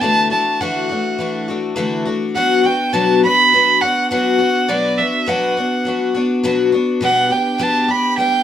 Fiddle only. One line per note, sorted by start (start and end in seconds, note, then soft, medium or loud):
0.01 0.31 A5 loud
0.31 0.62 A5 medium
0.61 1.48 F#5 medium
2.35 2.67 F#5 loud
2.65 2.95 G5 medium
2.93 3.23 A5 medium
3.23 3.83 B5 loud
3.81 4.10 F#5 medium
4.10 4.70 F#5 medium
4.69 5.00 D5 medium
4.98 5.29 E5 medium
5.28 6.15 F#5 medium
7.03 7.33 F#5 loud
7.32 7.64 G5 medium
7.63 7.84 A5 loud
7.84 7.92 A5 medium
7.90 8.17 B5 loud
8.18 8.43 G5 loud